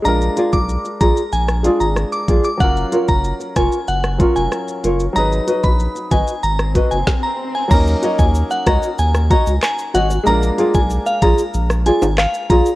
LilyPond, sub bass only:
\new Staff \with { instrumentName = "Sub bass" } { \clef bass \time 4/4 \key ees \minor \tempo 4 = 94 bes,,8 r16 ces,8 r16 bes,,16 r16 bes,,8. aes,,8 r16 bes,,16 r16 | ges,,8 r16 ges,,8 r16 f,,16 r16 ges,,8. f,,16 r8 ges,,8 | aes,,8 r16 bes,,8 r16 aes,,16 r16 aes,,8. ges,,16 r4 | ees,8 r16 ees,8 r16 des,16 r16 ees,8. des,16 r8 aes,,8 |
bes,,8 r16 ces,8 r16 bes,,16 r16 bes,,8. aes,,8 r16 bes,,16 r16 | }